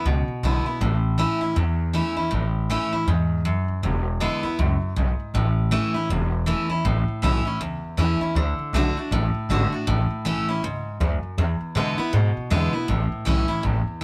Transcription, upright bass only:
0.05 0.25 C#2 medium
0.28 muted upright bass stroke medium
0.43 0.63 B1 medium
0.66 muted upright bass stroke medium
0.81 1.23 A1 loud
1.41 muted upright bass stroke medium
1.56 1.99 E2 medium
2.17 muted upright bass stroke medium
2.32 2.75 A1 medium
2.92 muted upright bass stroke medium
3.07 3.50 E2 medium
3.68 muted upright bass stroke medium
3.83 4.25 E1 medium
4.44 muted upright bass stroke medium
4.59 4.78 C#2 medium
4.82 muted upright bass stroke medium
4.97 5.16 B1 medium
5.19 muted upright bass stroke medium
5.34 5.77 A1 loud
5.94 muted upright bass stroke medium
6.09 6.52 E1 medium
6.70 muted upright bass stroke medium
6.85 7.07 A1 medium
7.08 muted upright bass stroke medium
7.23 7.45 B1 loud
7.60 7.82 C#2 medium
7.83 muted upright bass stroke soft
7.98 8.20 E2 medium
8.21 muted upright bass stroke medium
8.35 8.58 D2 loud
8.59 muted upright bass stroke medium
8.73 8.95 B1 loud
8.96 muted upright bass stroke medium
9.11 9.34 A1 medium
9.34 muted upright bass stroke medium
9.49 9.71 G#1 medium
9.72 muted upright bass stroke medium
9.87 10.10 A1 medium
10.10 muted upright bass stroke medium
10.25 10.46 B1 medium
10.48 muted upright bass stroke soft
10.62 10.84 C#2 medium
10.86 muted upright bass stroke soft
11.00 11.22 D2 loud
11.23 muted upright bass stroke medium
11.38 11.60 E2 medium
11.61 muted upright bass stroke medium
11.75 11.98 B2 medium
11.99 muted upright bass stroke medium
12.13 12.36 G#2 medium
12.37 muted upright bass stroke medium
12.51 12.73 E2 loud
12.74 muted upright bass stroke medium
12.88 13.11 A1 medium
13.12 muted upright bass stroke medium
13.26 13.48 B1 medium
13.50 muted upright bass stroke medium
13.64 13.86 A1 medium
13.87 muted upright bass stroke medium

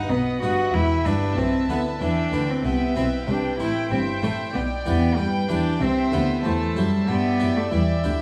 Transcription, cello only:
0.00 0.11 D#4 medium
0.10 0.41 B3 medium
0.42 0.75 F#4 medium
0.74 1.07 E4 medium
1.06 1.39 D4 medium
1.38 1.69 C4 medium
1.70 1.78 B3 medium
2.01 2.51 D4 medium
2.50 2.66 C4 medium
2.65 2.95 B3 medium
2.96 3.04 C4 medium
3.28 3.58 D4 medium
3.59 3.90 E4 medium
3.91 3.99 C4 medium
4.23 4.31 A3 medium
4.55 4.63 B3 medium
4.86 5.19 B3 medium
5.18 5.49 G3 medium
5.49 5.83 D4 medium
5.81 6.14 C4 medium
6.13 6.46 B3 medium
6.45 6.78 A3 medium
6.76 7.09 G3 medium
7.08 7.58 B3 medium
7.56 7.71 A3 medium
7.72 7.80 G3 medium

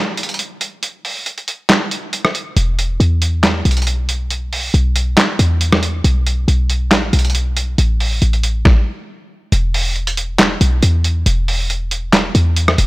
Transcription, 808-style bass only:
2.57 2.98 E1 loud
3.00 3.63 E2 loud
3.65 4.70 B1 loud
4.74 5.16 B1 loud
5.39 6.02 E2 loud
6.04 6.46 B1 loud
6.48 6.93 B1 loud
6.91 7.12 A1 loud
7.13 7.76 B1 loud
7.78 8.20 A1 loud
8.22 8.64 A1 loud
9.52 10.57 E1 loud
10.61 10.82 B1 loud
10.83 11.24 E2 loud
11.26 12.31 E1 loud
12.35 12.77 E2 loud
12.78 12.87 E1 loud

